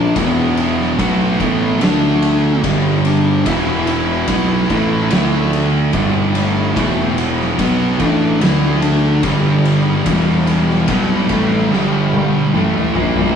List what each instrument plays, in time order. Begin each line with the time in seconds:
Already playing: fingered electric bass A#1, distorted electric guitar A#2 F3 A#3, lead electric guitar D4
0.14 fingered electric bass E1, distorted electric guitar E2 B2 E3, lead electric guitar B3, kick, ride
0.57 ride
0.80 snare
0.96 fingered electric bass B1, distorted electric guitar B2 F#3 B3, lead electric guitar A3, kick, ride
1.39 fingered electric bass A1, distorted electric guitar A2 E3 A3, lead electric guitar B3, kick, ride
1.80 fingered electric bass D2, distorted electric guitar D3 A3 D4, lead electric guitar D4, snare, ride
2.22 ride
2.63 fingered electric bass G1, distorted electric guitar G2 D3 G3, kick, ride
3.05 lead electric guitar D4, ride
3.45 fingered electric bass E1, distorted electric guitar E2 B2 E3, lead electric guitar E4, kick, ride
3.87 lead electric guitar E4, ride
4.27 fingered electric bass B1, distorted electric guitar B2 F#3 B3, kick, ride
4.69 fingered electric bass A1, distorted electric guitar A2 E3 A3, kick, ride
5.09 fingered electric bass D2, distorted electric guitar D3 A3 D4, snare, ride
5.53 ride
5.92 fingered electric bass G1, distorted electric guitar G2 D3 G3, kick, ride
6.35 lead electric guitar A3, ride
6.75 fingered electric bass E1, distorted electric guitar E2 B2 E3, kick, ride
7.18 ride
7.40 snare
7.57 fingered electric bass B1, distorted electric guitar B2 F#3 B3, kick, ride
7.61 lead electric guitar B3
7.99 fingered electric bass A1, distorted electric guitar A2 E3 A3, lead electric guitar D4, kick, ride
8.39 fingered electric bass D2, distorted electric guitar D3 A3 D4, lead electric guitar E4, ride
8.44 snare
8.82 lead electric guitar D4, ride
9.22 fingered electric bass G1, distorted electric guitar G2 D3 G3, lead electric guitar G3, kick, ride
9.65 ride
10.05 fingered electric bass E1, distorted electric guitar E2 B2 E3, kick, ride
10.47 ride
10.70 snare
10.88 fingered electric bass B1, distorted electric guitar B2 F#3 B3, kick, ride
11.29 fingered electric bass A1, distorted electric guitar A2 E3 A3, kick, ride
11.72 fingered electric bass G1, distorted electric guitar G2 D3 G3, snare
12.12 high tom
12.53 fingered electric bass A1, distorted electric guitar A2 E3 A3, mid tom
12.74 mid tom
12.95 fingered electric bass A#1, distorted electric guitar A#2 F3 A#3, floor tom
13.16 floor tom